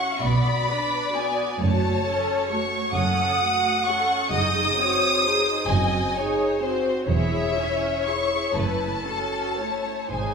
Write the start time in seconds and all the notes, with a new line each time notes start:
Already playing: C#4 F#4 F#5 C#6
0.23 B1 B2 B3 F#4 D5 B5
0.68 D4 B4
1.14 B3 F#4 G#5
1.59 F#1 F#2 A3 F#4 C#5 A5
2.06 C#4 A4
2.49 A3 F#4 C#6
2.94 F#1 F#2 C#4 A4 F#5 D#6
3.41 A3 F#4
3.85 C#4 A4 C#6
4.32 F#1 F#2 D#4 G#4 D#5 D#6
4.78 C4 F#4 C#5
5.23 D#4 G#4 C5
5.68 F#1 F#2 C4 F#4 D#5 G#5
6.15 D#4 G#4 C#5
6.62 C4 F#4 C5
7.08 E1 E2 E4 G#4 C#5 E5
7.56 C#4 E4
8.04 E4 G#4 C#6
8.53 F#1 F#2 A3 E4 B4 A5
9.04 C#4 F#4 A4
9.57 A3 E4 C#5
10.11 G#1 G#2 G#3 D#4 C5 G#5